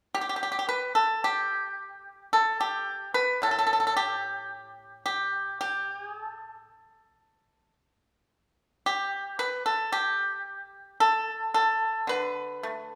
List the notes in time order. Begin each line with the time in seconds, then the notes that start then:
0.15 G4
0.21 G4
0.29 G4
0.36 G4
0.43 G4
0.52 G4
0.59 G4
0.69 B4
0.95 A4
1.24 G4
2.33 A4
2.61 G4
3.14 B4
3.42 A2 A4
3.51 A4
3.59 A4
3.67 A4
3.73 A4
3.80 A4
3.87 A4
3.97 G4
5.06 G4
5.61 G4
6.00 G#4
6.24 A4
8.86 G4
9.39 B4
9.66 A4
9.92 G4
11.00 A4
11.54 A4
12.07 D3 B4
12.63 A3